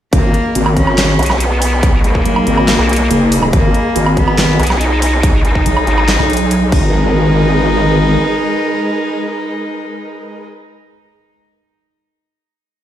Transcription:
0.13 0.32 G#1 loud
0.13 0.68 A#3 loud
0.13 6.68 G#4 medium
0.13 6.68 D#5 medium
0.13 3.50 A#5 medium
0.13 6.68 B5 medium
0.13 kick loud
0.13 closed hi-hat medium
0.34 closed hi-hat medium
0.55 1.17 G#1 loud
0.55 closed hi-hat medium
0.66 low woodblock medium
0.77 1.32 C#4 loud
0.77 kick medium
0.77 closed hi-hat medium
0.87 low woodblock medium
0.98 snare loud
0.98 clap medium
0.98 closed hi-hat medium
1.19 2.03 B1 medium
1.19 closed hi-hat medium
1.19 low woodblock medium
1.23 closed hi-hat medium
1.26 snare soft
1.26 closed hi-hat medium
1.26 low woodblock medium
1.40 1.96 B3 loud
1.40 closed hi-hat medium
1.62 open hi-hat loud
1.83 kick loud
1.83 closed hi-hat medium
2.04 2.24 G#1 loud
2.04 3.45 A#3 loud
2.04 closed hi-hat medium
2.15 kick medium
2.25 2.45 B1 loud
2.25 closed hi-hat medium
2.36 low woodblock medium
2.47 2.77 G#1 loud
2.47 closed hi-hat medium
2.57 low woodblock medium
2.68 snare loud
2.68 clap medium
2.68 closed hi-hat medium
2.79 3.09 B1 loud
2.79 low woodblock medium
2.89 closed hi-hat medium
2.93 closed hi-hat medium
2.96 closed hi-hat medium
3.11 3.51 F#1 loud
3.11 closed hi-hat medium
3.32 open hi-hat medium
3.43 low woodblock medium
3.53 3.73 G#1 loud
3.53 4.09 A#3 loud
3.53 6.69 G#5 medium
3.53 kick loud
3.53 closed hi-hat medium
3.74 closed hi-hat medium
3.96 4.58 G#1 loud
3.96 closed hi-hat medium
4.06 low woodblock medium
4.17 4.72 B3 loud
4.17 kick medium
4.17 closed hi-hat medium
4.28 low woodblock medium
4.38 snare loud
4.38 clap medium
4.38 closed hi-hat medium
4.60 5.43 B1 medium
4.60 closed hi-hat medium
4.60 low woodblock medium
4.63 closed hi-hat medium
4.67 snare soft
4.67 closed hi-hat medium
4.67 low woodblock medium
4.81 5.36 D#4 loud
4.81 closed hi-hat medium
5.02 open hi-hat medium
5.23 kick loud
5.23 closed hi-hat medium
5.45 5.64 G#1 medium
5.45 6.72 D#4 loud
5.45 closed hi-hat soft
5.55 kick medium
5.66 5.86 B1 loud
5.66 closed hi-hat medium
5.77 low woodblock medium
5.87 6.17 G#1 loud
5.87 closed hi-hat medium
5.98 low woodblock medium
6.08 snare loud
6.08 clap medium
6.08 closed hi-hat medium
6.19 6.72 B1 loud
6.19 low woodblock medium
6.30 closed hi-hat soft
6.33 closed hi-hat medium
6.37 closed hi-hat medium
6.51 closed hi-hat medium
6.72 8.17 G#1 loud
6.72 10.45 G#3 medium
6.72 10.45 D#4 loud
6.72 10.45 G#4 medium
6.72 10.45 A#4 medium
6.72 10.45 B4 medium
6.72 10.45 D#5 medium
6.72 kick loud
6.72 crash medium

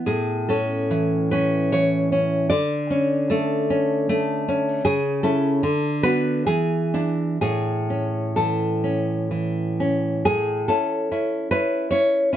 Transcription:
0.06 2.47 A2 soft
0.06 0.48 G#4 medium
0.49 1.31 C#4 soft
0.49 1.29 A4 soft
0.91 1.72 E3 soft
1.31 2.11 C#4 soft
1.31 1.72 B4 medium
1.72 2.51 E3 soft
1.72 2.48 C#5 medium
2.12 2.50 C#4 soft
2.50 4.81 D3 medium
2.50 3.27 D5 medium
2.90 3.69 C#4 soft
3.30 4.08 A3 soft
3.30 4.42 A4 medium
3.70 4.47 C#4 soft
4.09 4.85 A3 soft
4.48 4.86 C#4 soft
4.85 5.61 C#3 medium
4.85 5.22 G#4 medium
5.23 5.59 C#4 soft
5.23 5.60 E4 soft
5.23 6.01 A4 medium
5.63 6.45 D3 medium
6.03 6.43 B3 soft
6.03 6.43 F#4 soft
6.03 6.45 B4 medium
6.46 7.37 E3 soft
6.46 7.36 G#4 medium
6.94 7.37 D4 soft
6.94 7.37 E4 soft
7.41 10.22 A2 soft
7.41 8.32 G#4 medium
7.90 8.83 C#4 soft
8.36 9.30 E3 soft
8.36 9.27 A4 soft
8.84 9.79 C#4 soft
9.31 10.26 E3 soft
9.80 10.26 C#4 soft
10.25 10.68 A2 medium
10.25 10.67 G#4 medium
10.68 11.10 C#4 soft
10.68 11.10 E4 soft
10.68 11.47 A4 soft
11.11 11.50 C#4 soft
11.11 11.51 E4 soft
11.51 11.91 C#4 soft
11.51 11.91 E4 soft
11.51 11.90 B4 medium
11.91 12.31 C#4 soft
11.91 12.32 E4 soft
11.91 12.37 C#5 medium
12.33 12.37 C#4 soft
12.33 12.37 E4 soft

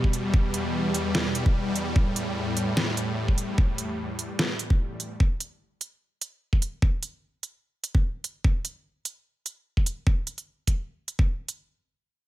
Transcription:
0.00 5.16 E2 medium
0.00 1.93 B2 medium
0.00 5.16 G3 medium
0.04 kick medium
0.13 closed hi-hat medium
0.34 kick loud
0.54 closed hi-hat medium
0.94 closed hi-hat medium
1.15 snare loud
1.35 closed hi-hat medium
1.46 kick loud
1.76 closed hi-hat medium
1.96 5.17 A2 medium
1.96 kick loud
2.16 closed hi-hat medium
2.57 closed hi-hat medium
2.77 snare loud
2.97 closed hi-hat medium
3.28 kick medium
3.38 closed hi-hat medium
3.58 kick loud
3.78 closed hi-hat medium
4.19 closed hi-hat medium
4.39 snare loud
4.59 closed hi-hat medium
4.70 kick loud
5.00 closed hi-hat medium
5.20 kick loud
5.40 closed hi-hat medium
5.81 closed hi-hat medium
6.21 closed hi-hat medium
6.53 kick medium
6.62 closed hi-hat medium
6.82 kick loud
7.03 closed hi-hat medium
7.43 closed hi-hat medium
7.84 closed hi-hat medium
7.95 kick medium
8.24 closed hi-hat medium
8.44 kick loud
8.65 closed hi-hat medium
9.05 closed hi-hat medium
9.46 closed hi-hat medium
9.77 kick medium
9.86 closed hi-hat medium
10.07 kick loud
10.27 closed hi-hat medium
10.38 closed hi-hat soft
10.67 kick medium
10.67 closed hi-hat medium
11.08 closed hi-hat medium
11.19 kick medium
11.48 closed hi-hat medium

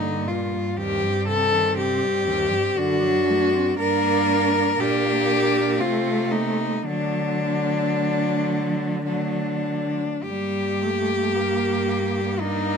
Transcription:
0.00 2.74 G2 medium
0.00 0.27 D3 medium
0.00 0.75 A#3 medium
0.00 0.29 D#4 medium
0.25 0.53 A#2 medium
0.25 0.79 F4 medium
0.51 0.78 G2 medium
0.77 1.04 D#2 medium
0.77 2.79 C4 medium
0.77 1.28 G4 loud
1.03 1.28 G2 medium
1.27 1.54 C3 medium
1.27 1.77 A4 loud
1.52 1.78 D#3 medium
1.77 2.03 C3 medium
1.77 2.79 G4 loud
2.02 2.28 G2 medium
2.26 2.51 D#2 medium
2.50 2.75 G2 medium
2.76 3.77 F#2 medium
2.76 3.03 D3 medium
2.76 3.77 D4 medium
2.76 3.79 F#4 loud
3.01 3.31 F#3 medium
3.29 3.55 A3 medium
3.53 3.77 C4 medium
3.77 4.76 G2 medium
3.77 4.75 A#3 medium
3.77 4.75 D4 medium
3.77 4.82 A#4 loud
4.79 5.81 A#2 medium
4.79 5.81 A#3 medium
4.79 5.81 D4 medium
4.79 5.82 G4 loud
5.80 6.85 C3 medium
5.80 6.87 A3 medium
5.80 6.33 C4 medium
5.80 6.33 F4 loud
6.31 6.88 A#3 medium
6.31 6.87 D#4 medium
6.86 9.98 D3 medium
6.86 9.03 F#3 medium
6.86 9.05 A3 medium
6.86 9.05 D4 loud
9.06 10.01 F#3 medium
9.06 10.01 A3 medium
9.06 10.25 D4 medium
10.23 12.77 G2 medium
10.23 10.83 G3 medium
10.23 12.42 A#3 medium
10.23 12.42 G4 loud
10.82 11.36 A3 medium
11.34 12.40 A#3 medium
12.40 12.77 A#3 medium
12.40 12.77 D4 medium
12.40 12.77 D#4 loud

